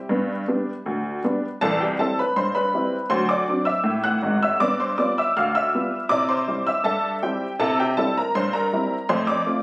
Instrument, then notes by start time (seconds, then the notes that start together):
honky-tonk piano
Already playing: G4 E5 G5
0.09 G2 B3
0.48 G3 B3 D4
0.86 D2
1.24 G3 B3 D4
1.61 C2 E3 A4 A5
1.80 G4 G5
1.99 G3 C4 E4 A4 A5
2.19 B4 B5
2.36 G2 C5 C6
2.55 B4 B5
2.74 G3 C4 E4
3.10 D2 F#3 C5 C6
3.29 D5 D6
3.48 F#3 C4 D4
3.65 E5 E6
3.84 A2
4.04 F#5 F#6
4.22 G#1 G#2
4.43 E5 E6
4.60 G2 B3 D5 D6
4.80 C5 C6
4.98 G3 B3 F4 D5 D6
5.18 E5 E6
5.37 D2 F5 F6
5.55 E5 E6
5.74 G3 B3 F4
6.09 C3 E4 D5 D6
6.29 C5 C6
6.48 G3 C4 E4
6.67 E5 E6
6.84 G2 A4 E5 A5
7.23 G3 C4 E4 G4 G5
7.59 C3 E4 A4 A5
7.80 G4 G5
7.97 G3 C4 E4 A4 A5
8.18 A#4 A#5
8.35 G2 C5 C6
8.53 A#4 A#5
8.73 G3 C4 E4
9.09 F2 A3 C5 C6
9.27 D5 D6
9.46 A3 C4 F4